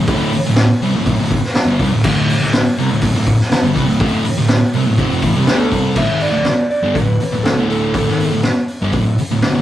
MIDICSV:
0, 0, Header, 1, 7, 480
1, 0, Start_track
1, 0, Tempo, 490998
1, 95, Time_signature, 4, 2, 24, 8
1, 9403, End_track
2, 0, Start_track
2, 0, Title_t, "Electric slide guitar"
2, 0, Program_c, 0, 29
2, 5406, Note_on_c, 0, 69, 80
2, 5844, Note_on_c, 0, 76, 119
2, 5877, Note_off_c, 0, 69, 0
2, 6080, Note_on_c, 0, 74, 108
2, 6090, Note_off_c, 0, 76, 0
2, 6528, Note_off_c, 0, 74, 0
2, 6554, Note_on_c, 0, 74, 91
2, 6788, Note_on_c, 0, 71, 91
2, 6806, Note_off_c, 0, 74, 0
2, 7267, Note_on_c, 0, 69, 86
2, 7291, Note_off_c, 0, 71, 0
2, 7514, Note_off_c, 0, 69, 0
2, 7526, Note_on_c, 0, 69, 76
2, 7773, Note_off_c, 0, 69, 0
2, 7789, Note_on_c, 0, 69, 80
2, 8226, Note_off_c, 0, 69, 0
2, 9403, End_track
3, 0, Start_track
3, 0, Title_t, "Distorted electric guitar"
3, 0, Program_c, 1, 30
3, 71, Note_on_c, 1, 38, 107
3, 82, Note_on_c, 1, 45, 113
3, 87, Note_on_c, 1, 50, 104
3, 314, Note_off_c, 1, 38, 0
3, 320, Note_off_c, 1, 45, 0
3, 323, Note_off_c, 1, 50, 0
3, 453, Note_on_c, 1, 38, 58
3, 456, Note_on_c, 1, 45, 79
3, 644, Note_off_c, 1, 38, 0
3, 646, Note_off_c, 1, 45, 0
3, 800, Note_on_c, 1, 48, 76
3, 807, Note_on_c, 1, 55, 100
3, 918, Note_off_c, 1, 48, 0
3, 922, Note_off_c, 1, 55, 0
3, 926, Note_on_c, 1, 38, 62
3, 930, Note_on_c, 1, 45, 69
3, 1028, Note_off_c, 1, 38, 0
3, 1031, Note_off_c, 1, 45, 0
3, 1039, Note_on_c, 1, 38, 67
3, 1043, Note_on_c, 1, 45, 70
3, 1155, Note_off_c, 1, 38, 0
3, 1162, Note_off_c, 1, 45, 0
3, 1166, Note_on_c, 1, 38, 69
3, 1174, Note_on_c, 1, 45, 76
3, 1360, Note_off_c, 1, 38, 0
3, 1363, Note_off_c, 1, 45, 0
3, 1638, Note_on_c, 1, 43, 98
3, 1643, Note_on_c, 1, 50, 111
3, 1756, Note_off_c, 1, 43, 0
3, 1758, Note_off_c, 1, 50, 0
3, 1769, Note_on_c, 1, 48, 97
3, 1777, Note_on_c, 1, 55, 115
3, 1880, Note_off_c, 1, 48, 0
3, 1884, Note_on_c, 1, 38, 72
3, 1885, Note_off_c, 1, 55, 0
3, 1890, Note_on_c, 1, 45, 68
3, 1996, Note_off_c, 1, 38, 0
3, 2003, Note_off_c, 1, 45, 0
3, 2008, Note_on_c, 1, 38, 95
3, 2015, Note_on_c, 1, 45, 100
3, 2021, Note_on_c, 1, 50, 112
3, 2235, Note_off_c, 1, 38, 0
3, 2243, Note_off_c, 1, 45, 0
3, 2246, Note_off_c, 1, 50, 0
3, 2362, Note_on_c, 1, 38, 67
3, 2369, Note_on_c, 1, 45, 79
3, 2555, Note_off_c, 1, 38, 0
3, 2559, Note_off_c, 1, 45, 0
3, 2721, Note_on_c, 1, 48, 81
3, 2732, Note_on_c, 1, 55, 99
3, 2835, Note_off_c, 1, 48, 0
3, 2841, Note_off_c, 1, 55, 0
3, 2849, Note_on_c, 1, 38, 66
3, 2854, Note_on_c, 1, 45, 63
3, 2957, Note_off_c, 1, 38, 0
3, 2958, Note_off_c, 1, 45, 0
3, 2969, Note_on_c, 1, 38, 58
3, 2970, Note_on_c, 1, 45, 63
3, 3070, Note_off_c, 1, 38, 0
3, 3076, Note_off_c, 1, 45, 0
3, 3081, Note_on_c, 1, 38, 65
3, 3088, Note_on_c, 1, 45, 79
3, 3274, Note_off_c, 1, 38, 0
3, 3277, Note_off_c, 1, 45, 0
3, 3554, Note_on_c, 1, 43, 92
3, 3565, Note_on_c, 1, 50, 114
3, 3663, Note_off_c, 1, 43, 0
3, 3667, Note_on_c, 1, 48, 96
3, 3673, Note_off_c, 1, 50, 0
3, 3677, Note_on_c, 1, 55, 112
3, 3787, Note_off_c, 1, 48, 0
3, 3791, Note_off_c, 1, 55, 0
3, 3794, Note_on_c, 1, 38, 63
3, 3795, Note_on_c, 1, 45, 68
3, 3891, Note_off_c, 1, 38, 0
3, 3900, Note_off_c, 1, 45, 0
3, 3903, Note_on_c, 1, 38, 101
3, 3912, Note_on_c, 1, 45, 108
3, 3921, Note_on_c, 1, 50, 101
3, 4140, Note_off_c, 1, 38, 0
3, 4149, Note_off_c, 1, 45, 0
3, 4153, Note_off_c, 1, 50, 0
3, 4274, Note_on_c, 1, 38, 65
3, 4276, Note_on_c, 1, 45, 70
3, 4469, Note_off_c, 1, 38, 0
3, 4470, Note_off_c, 1, 45, 0
3, 4626, Note_on_c, 1, 48, 82
3, 4638, Note_on_c, 1, 55, 92
3, 4746, Note_off_c, 1, 48, 0
3, 4752, Note_off_c, 1, 55, 0
3, 4754, Note_on_c, 1, 38, 55
3, 4756, Note_on_c, 1, 45, 73
3, 4874, Note_off_c, 1, 38, 0
3, 4878, Note_off_c, 1, 45, 0
3, 4878, Note_on_c, 1, 41, 88
3, 4887, Note_on_c, 1, 48, 102
3, 4893, Note_on_c, 1, 53, 94
3, 5112, Note_off_c, 1, 41, 0
3, 5115, Note_off_c, 1, 48, 0
3, 5118, Note_on_c, 1, 45, 95
3, 5119, Note_off_c, 1, 53, 0
3, 5119, Note_on_c, 1, 52, 100
3, 5228, Note_off_c, 1, 45, 0
3, 5232, Note_off_c, 1, 52, 0
3, 5232, Note_on_c, 1, 48, 93
3, 5240, Note_on_c, 1, 55, 126
3, 5338, Note_off_c, 1, 55, 0
3, 5342, Note_on_c, 1, 50, 95
3, 5349, Note_off_c, 1, 48, 0
3, 5349, Note_on_c, 1, 57, 97
3, 5356, Note_on_c, 1, 62, 98
3, 5584, Note_off_c, 1, 50, 0
3, 5584, Note_on_c, 1, 48, 99
3, 5587, Note_off_c, 1, 57, 0
3, 5588, Note_on_c, 1, 55, 112
3, 5591, Note_off_c, 1, 62, 0
3, 5596, Note_on_c, 1, 60, 112
3, 5825, Note_off_c, 1, 48, 0
3, 5827, Note_off_c, 1, 55, 0
3, 5831, Note_off_c, 1, 60, 0
3, 5834, Note_on_c, 1, 38, 93
3, 5845, Note_on_c, 1, 45, 102
3, 5936, Note_off_c, 1, 38, 0
3, 5940, Note_on_c, 1, 44, 81
3, 5947, Note_off_c, 1, 45, 0
3, 5950, Note_on_c, 1, 51, 94
3, 5953, Note_on_c, 1, 56, 91
3, 6183, Note_off_c, 1, 44, 0
3, 6183, Note_off_c, 1, 51, 0
3, 6187, Note_on_c, 1, 38, 64
3, 6187, Note_on_c, 1, 45, 68
3, 6190, Note_off_c, 1, 56, 0
3, 6314, Note_off_c, 1, 38, 0
3, 6314, Note_off_c, 1, 45, 0
3, 6674, Note_on_c, 1, 43, 72
3, 6684, Note_on_c, 1, 50, 92
3, 6791, Note_off_c, 1, 43, 0
3, 6795, Note_off_c, 1, 50, 0
3, 6799, Note_on_c, 1, 45, 63
3, 6800, Note_on_c, 1, 38, 63
3, 6993, Note_off_c, 1, 45, 0
3, 6994, Note_off_c, 1, 38, 0
3, 7156, Note_on_c, 1, 38, 74
3, 7159, Note_on_c, 1, 45, 80
3, 7266, Note_off_c, 1, 38, 0
3, 7274, Note_off_c, 1, 45, 0
3, 7278, Note_on_c, 1, 38, 65
3, 7285, Note_on_c, 1, 45, 69
3, 7391, Note_off_c, 1, 38, 0
3, 7396, Note_off_c, 1, 45, 0
3, 7402, Note_on_c, 1, 38, 88
3, 7408, Note_on_c, 1, 45, 95
3, 7412, Note_on_c, 1, 50, 95
3, 7757, Note_off_c, 1, 38, 0
3, 7760, Note_off_c, 1, 45, 0
3, 7762, Note_off_c, 1, 50, 0
3, 7774, Note_on_c, 1, 38, 104
3, 7784, Note_on_c, 1, 45, 98
3, 7883, Note_off_c, 1, 38, 0
3, 7888, Note_off_c, 1, 45, 0
3, 7896, Note_on_c, 1, 44, 93
3, 7903, Note_on_c, 1, 51, 98
3, 7908, Note_on_c, 1, 56, 78
3, 8125, Note_off_c, 1, 44, 0
3, 8128, Note_off_c, 1, 51, 0
3, 8131, Note_off_c, 1, 56, 0
3, 8131, Note_on_c, 1, 38, 61
3, 8135, Note_on_c, 1, 45, 69
3, 8250, Note_off_c, 1, 38, 0
3, 8251, Note_off_c, 1, 45, 0
3, 8619, Note_on_c, 1, 43, 83
3, 8626, Note_on_c, 1, 50, 85
3, 8727, Note_off_c, 1, 43, 0
3, 8731, Note_off_c, 1, 50, 0
3, 8731, Note_on_c, 1, 38, 64
3, 8735, Note_on_c, 1, 45, 69
3, 8923, Note_off_c, 1, 38, 0
3, 8925, Note_off_c, 1, 45, 0
3, 9098, Note_on_c, 1, 38, 65
3, 9103, Note_on_c, 1, 45, 69
3, 9206, Note_off_c, 1, 38, 0
3, 9212, Note_off_c, 1, 45, 0
3, 9218, Note_on_c, 1, 38, 66
3, 9224, Note_on_c, 1, 45, 63
3, 9317, Note_off_c, 1, 38, 0
3, 9323, Note_off_c, 1, 45, 0
3, 9329, Note_on_c, 1, 38, 82
3, 9335, Note_on_c, 1, 45, 94
3, 9343, Note_on_c, 1, 50, 93
3, 9403, Note_off_c, 1, 38, 0
3, 9403, Note_off_c, 1, 45, 0
3, 9403, Note_off_c, 1, 50, 0
3, 9403, End_track
4, 0, Start_track
4, 0, Title_t, "Picked electric bass"
4, 0, Program_c, 2, 34
4, 73, Note_on_c, 2, 26, 97
4, 305, Note_off_c, 2, 26, 0
4, 423, Note_on_c, 2, 26, 80
4, 659, Note_off_c, 2, 26, 0
4, 785, Note_on_c, 2, 36, 103
4, 896, Note_off_c, 2, 36, 0
4, 902, Note_on_c, 2, 26, 84
4, 1027, Note_off_c, 2, 26, 0
4, 1036, Note_on_c, 2, 26, 94
4, 1125, Note_off_c, 2, 26, 0
4, 1131, Note_on_c, 2, 26, 75
4, 1371, Note_off_c, 2, 26, 0
4, 1614, Note_on_c, 2, 31, 91
4, 1741, Note_off_c, 2, 31, 0
4, 1759, Note_on_c, 2, 36, 83
4, 1863, Note_off_c, 2, 36, 0
4, 1868, Note_on_c, 2, 26, 91
4, 1989, Note_off_c, 2, 26, 0
4, 2001, Note_on_c, 2, 26, 101
4, 2226, Note_off_c, 2, 26, 0
4, 2356, Note_on_c, 2, 26, 86
4, 2583, Note_off_c, 2, 26, 0
4, 2732, Note_on_c, 2, 36, 99
4, 2840, Note_off_c, 2, 36, 0
4, 2847, Note_on_c, 2, 26, 81
4, 2946, Note_off_c, 2, 26, 0
4, 2951, Note_on_c, 2, 26, 77
4, 3050, Note_off_c, 2, 26, 0
4, 3056, Note_on_c, 2, 26, 78
4, 3292, Note_off_c, 2, 26, 0
4, 3534, Note_on_c, 2, 31, 97
4, 3659, Note_off_c, 2, 31, 0
4, 3669, Note_on_c, 2, 36, 84
4, 3767, Note_off_c, 2, 36, 0
4, 3773, Note_on_c, 2, 26, 94
4, 3898, Note_off_c, 2, 26, 0
4, 3910, Note_on_c, 2, 26, 101
4, 4138, Note_off_c, 2, 26, 0
4, 4282, Note_on_c, 2, 26, 85
4, 4504, Note_off_c, 2, 26, 0
4, 4637, Note_on_c, 2, 36, 103
4, 4750, Note_off_c, 2, 36, 0
4, 4765, Note_on_c, 2, 26, 83
4, 4859, Note_off_c, 2, 26, 0
4, 4865, Note_on_c, 2, 29, 98
4, 5095, Note_off_c, 2, 29, 0
4, 5105, Note_on_c, 2, 33, 105
4, 5224, Note_off_c, 2, 33, 0
4, 5243, Note_on_c, 2, 36, 95
4, 5334, Note_off_c, 2, 36, 0
4, 5340, Note_on_c, 2, 38, 105
4, 5573, Note_off_c, 2, 38, 0
4, 5589, Note_on_c, 2, 36, 92
4, 5818, Note_off_c, 2, 36, 0
4, 5822, Note_on_c, 2, 26, 92
4, 5930, Note_off_c, 2, 26, 0
4, 5936, Note_on_c, 2, 32, 84
4, 6171, Note_off_c, 2, 32, 0
4, 6176, Note_on_c, 2, 26, 76
4, 6299, Note_off_c, 2, 26, 0
4, 6669, Note_on_c, 2, 31, 91
4, 6787, Note_off_c, 2, 31, 0
4, 6802, Note_on_c, 2, 26, 72
4, 7026, Note_off_c, 2, 26, 0
4, 7143, Note_on_c, 2, 26, 77
4, 7265, Note_off_c, 2, 26, 0
4, 7276, Note_on_c, 2, 26, 77
4, 7392, Note_off_c, 2, 26, 0
4, 7396, Note_on_c, 2, 26, 89
4, 7736, Note_off_c, 2, 26, 0
4, 7768, Note_on_c, 2, 26, 104
4, 7879, Note_off_c, 2, 26, 0
4, 7890, Note_on_c, 2, 32, 79
4, 8112, Note_off_c, 2, 32, 0
4, 8129, Note_on_c, 2, 26, 82
4, 8240, Note_off_c, 2, 26, 0
4, 8620, Note_on_c, 2, 31, 88
4, 8723, Note_off_c, 2, 31, 0
4, 8728, Note_on_c, 2, 26, 79
4, 8953, Note_off_c, 2, 26, 0
4, 9089, Note_on_c, 2, 26, 78
4, 9202, Note_off_c, 2, 26, 0
4, 9222, Note_on_c, 2, 26, 76
4, 9330, Note_off_c, 2, 26, 0
4, 9336, Note_on_c, 2, 26, 86
4, 9403, Note_off_c, 2, 26, 0
4, 9403, End_track
5, 0, Start_track
5, 0, Title_t, "Muted distorted electric guitar strokes"
5, 330, Note_on_c, 9, 29, 67
5, 428, Note_off_c, 9, 29, 0
5, 1523, Note_on_c, 9, 29, 64
5, 1621, Note_off_c, 9, 29, 0
5, 2247, Note_on_c, 9, 29, 66
5, 2344, Note_off_c, 9, 29, 0
5, 3428, Note_on_c, 9, 29, 59
5, 3526, Note_off_c, 9, 29, 0
5, 4152, Note_on_c, 9, 29, 66
5, 4250, Note_off_c, 9, 29, 0
5, 6327, Note_on_c, 9, 29, 59
5, 6424, Note_off_c, 9, 29, 0
5, 7046, Note_on_c, 9, 29, 61
5, 7143, Note_off_c, 9, 29, 0
5, 8261, Note_on_c, 9, 29, 56
5, 8359, Note_off_c, 9, 29, 0
5, 8980, Note_on_c, 9, 29, 57
5, 9078, Note_off_c, 9, 29, 0
5, 9403, End_track
6, 0, Start_track
6, 0, Title_t, "Muted picked electric bass strokes"
6, 309, Note_on_c, 9, 29, 40
6, 407, Note_off_c, 9, 29, 0
6, 1501, Note_on_c, 9, 29, 47
6, 1599, Note_off_c, 9, 29, 0
6, 2250, Note_on_c, 9, 29, 41
6, 2348, Note_off_c, 9, 29, 0
6, 3431, Note_on_c, 9, 29, 42
6, 3528, Note_off_c, 9, 29, 0
6, 4142, Note_on_c, 9, 29, 41
6, 4240, Note_off_c, 9, 29, 0
6, 6311, Note_on_c, 9, 29, 41
6, 6409, Note_off_c, 9, 29, 0
6, 7039, Note_on_c, 9, 29, 43
6, 7136, Note_off_c, 9, 29, 0
6, 8257, Note_on_c, 9, 29, 39
6, 8355, Note_off_c, 9, 29, 0
6, 8973, Note_on_c, 9, 29, 43
6, 9071, Note_off_c, 9, 29, 0
6, 9403, End_track
7, 0, Start_track
7, 0, Title_t, "Drums"
7, 66, Note_on_c, 9, 46, 91
7, 76, Note_on_c, 9, 36, 125
7, 164, Note_off_c, 9, 46, 0
7, 174, Note_off_c, 9, 36, 0
7, 315, Note_on_c, 9, 46, 68
7, 413, Note_off_c, 9, 46, 0
7, 546, Note_on_c, 9, 46, 79
7, 550, Note_on_c, 9, 38, 113
7, 644, Note_off_c, 9, 46, 0
7, 647, Note_off_c, 9, 38, 0
7, 800, Note_on_c, 9, 46, 59
7, 897, Note_off_c, 9, 46, 0
7, 1036, Note_on_c, 9, 36, 83
7, 1038, Note_on_c, 9, 46, 91
7, 1134, Note_off_c, 9, 36, 0
7, 1135, Note_off_c, 9, 46, 0
7, 1278, Note_on_c, 9, 36, 86
7, 1282, Note_on_c, 9, 46, 63
7, 1375, Note_off_c, 9, 36, 0
7, 1379, Note_off_c, 9, 46, 0
7, 1407, Note_on_c, 9, 38, 35
7, 1505, Note_off_c, 9, 38, 0
7, 1512, Note_on_c, 9, 46, 76
7, 1516, Note_on_c, 9, 38, 107
7, 1610, Note_off_c, 9, 46, 0
7, 1614, Note_off_c, 9, 38, 0
7, 1753, Note_on_c, 9, 46, 70
7, 1754, Note_on_c, 9, 36, 93
7, 1851, Note_off_c, 9, 46, 0
7, 1852, Note_off_c, 9, 36, 0
7, 1993, Note_on_c, 9, 49, 110
7, 1995, Note_on_c, 9, 36, 113
7, 2091, Note_off_c, 9, 49, 0
7, 2093, Note_off_c, 9, 36, 0
7, 2241, Note_on_c, 9, 46, 63
7, 2339, Note_off_c, 9, 46, 0
7, 2471, Note_on_c, 9, 46, 80
7, 2475, Note_on_c, 9, 38, 114
7, 2569, Note_off_c, 9, 46, 0
7, 2572, Note_off_c, 9, 38, 0
7, 2703, Note_on_c, 9, 46, 56
7, 2801, Note_off_c, 9, 46, 0
7, 2944, Note_on_c, 9, 46, 93
7, 2952, Note_on_c, 9, 36, 86
7, 3042, Note_off_c, 9, 46, 0
7, 3050, Note_off_c, 9, 36, 0
7, 3188, Note_on_c, 9, 46, 64
7, 3193, Note_on_c, 9, 36, 88
7, 3286, Note_off_c, 9, 46, 0
7, 3290, Note_off_c, 9, 36, 0
7, 3322, Note_on_c, 9, 38, 37
7, 3419, Note_off_c, 9, 38, 0
7, 3434, Note_on_c, 9, 46, 85
7, 3438, Note_on_c, 9, 38, 101
7, 3532, Note_off_c, 9, 46, 0
7, 3536, Note_off_c, 9, 38, 0
7, 3673, Note_on_c, 9, 36, 92
7, 3677, Note_on_c, 9, 46, 75
7, 3771, Note_off_c, 9, 36, 0
7, 3775, Note_off_c, 9, 46, 0
7, 3912, Note_on_c, 9, 36, 120
7, 3912, Note_on_c, 9, 46, 81
7, 4009, Note_off_c, 9, 46, 0
7, 4010, Note_off_c, 9, 36, 0
7, 4150, Note_on_c, 9, 46, 66
7, 4248, Note_off_c, 9, 46, 0
7, 4382, Note_on_c, 9, 46, 77
7, 4386, Note_on_c, 9, 38, 113
7, 4480, Note_off_c, 9, 46, 0
7, 4484, Note_off_c, 9, 38, 0
7, 4625, Note_on_c, 9, 46, 58
7, 4722, Note_off_c, 9, 46, 0
7, 4868, Note_on_c, 9, 36, 89
7, 4868, Note_on_c, 9, 46, 88
7, 4966, Note_off_c, 9, 36, 0
7, 4966, Note_off_c, 9, 46, 0
7, 5101, Note_on_c, 9, 46, 64
7, 5108, Note_on_c, 9, 36, 94
7, 5199, Note_off_c, 9, 46, 0
7, 5206, Note_off_c, 9, 36, 0
7, 5345, Note_on_c, 9, 46, 78
7, 5349, Note_on_c, 9, 38, 105
7, 5443, Note_off_c, 9, 46, 0
7, 5447, Note_off_c, 9, 38, 0
7, 5589, Note_on_c, 9, 36, 95
7, 5593, Note_on_c, 9, 46, 62
7, 5687, Note_off_c, 9, 36, 0
7, 5691, Note_off_c, 9, 46, 0
7, 5823, Note_on_c, 9, 49, 102
7, 5826, Note_on_c, 9, 36, 109
7, 5920, Note_off_c, 9, 49, 0
7, 5923, Note_off_c, 9, 36, 0
7, 6059, Note_on_c, 9, 46, 52
7, 6157, Note_off_c, 9, 46, 0
7, 6299, Note_on_c, 9, 46, 64
7, 6303, Note_on_c, 9, 38, 94
7, 6396, Note_off_c, 9, 46, 0
7, 6400, Note_off_c, 9, 38, 0
7, 6554, Note_on_c, 9, 46, 45
7, 6652, Note_off_c, 9, 46, 0
7, 6796, Note_on_c, 9, 36, 114
7, 6802, Note_on_c, 9, 46, 73
7, 6894, Note_off_c, 9, 36, 0
7, 6900, Note_off_c, 9, 46, 0
7, 7037, Note_on_c, 9, 46, 59
7, 7135, Note_off_c, 9, 46, 0
7, 7283, Note_on_c, 9, 46, 76
7, 7287, Note_on_c, 9, 38, 111
7, 7381, Note_off_c, 9, 46, 0
7, 7385, Note_off_c, 9, 38, 0
7, 7528, Note_on_c, 9, 46, 67
7, 7625, Note_off_c, 9, 46, 0
7, 7763, Note_on_c, 9, 36, 108
7, 7763, Note_on_c, 9, 46, 87
7, 7861, Note_off_c, 9, 36, 0
7, 7861, Note_off_c, 9, 46, 0
7, 7901, Note_on_c, 9, 38, 31
7, 7998, Note_off_c, 9, 38, 0
7, 8012, Note_on_c, 9, 46, 62
7, 8110, Note_off_c, 9, 46, 0
7, 8240, Note_on_c, 9, 46, 70
7, 8244, Note_on_c, 9, 38, 99
7, 8338, Note_off_c, 9, 46, 0
7, 8342, Note_off_c, 9, 38, 0
7, 8484, Note_on_c, 9, 46, 55
7, 8582, Note_off_c, 9, 46, 0
7, 8726, Note_on_c, 9, 46, 77
7, 8729, Note_on_c, 9, 36, 113
7, 8824, Note_off_c, 9, 46, 0
7, 8827, Note_off_c, 9, 36, 0
7, 8974, Note_on_c, 9, 46, 62
7, 9072, Note_off_c, 9, 46, 0
7, 9208, Note_on_c, 9, 46, 79
7, 9212, Note_on_c, 9, 38, 108
7, 9306, Note_off_c, 9, 46, 0
7, 9310, Note_off_c, 9, 38, 0
7, 9403, End_track
0, 0, End_of_file